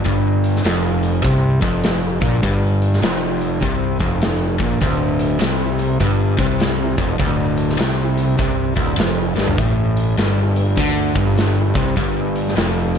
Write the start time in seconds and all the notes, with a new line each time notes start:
0.05 G1 G2, kick, closed hi-hat
0.44 closed hi-hat
0.56 snare
0.65 F1 F2, snare, closed hi-hat
1.03 closed hi-hat
1.24 C2 C3, kick, closed hi-hat
1.62 F1 F2, kick, closed hi-hat
1.84 snare, closed hi-hat
2.21 A#1 A#2, kick, closed hi-hat
2.43 G1 G2, kick, closed hi-hat
2.82 closed hi-hat
2.94 snare
3.02 F1 F2, snare, closed hi-hat
3.41 closed hi-hat
3.62 C2 C3, kick, closed hi-hat
4.00 F1 F2, kick, closed hi-hat
4.22 snare, closed hi-hat
4.60 A#1 A#2, kick, closed hi-hat
4.81 D1 D2, kick, closed hi-hat
5.19 closed hi-hat
5.40 C2 C3, snare, closed hi-hat
5.79 closed hi-hat
6.00 G1 G2, kick, closed hi-hat
6.39 C2 C3, kick, closed hi-hat
6.60 snare, closed hi-hat
6.98 F1 F2, kick, closed hi-hat
7.19 D1 D2, kick, closed hi-hat
7.57 closed hi-hat
7.70 snare
7.79 C2 C3, snare, closed hi-hat
8.18 closed hi-hat
8.38 C2 C3, kick, closed hi-hat
8.76 D1 D2, kick, closed hi-hat
8.98 F1 F2, snare, closed hi-hat
9.36 G1 G2, snare
9.48 floor tom
9.58 A1 A2, kick, closed hi-hat
9.97 closed hi-hat
10.18 G1 G2, snare, closed hi-hat
10.56 closed hi-hat
10.77 D2 D3, kick, closed hi-hat
11.15 G1 G2, kick, closed hi-hat
11.38 snare, closed hi-hat
11.75 C2 C3, kick, closed hi-hat
11.97 G1 G2, kick, closed hi-hat
12.36 closed hi-hat
12.48 snare
12.56 F1 F2, snare, closed hi-hat
12.95 closed hi-hat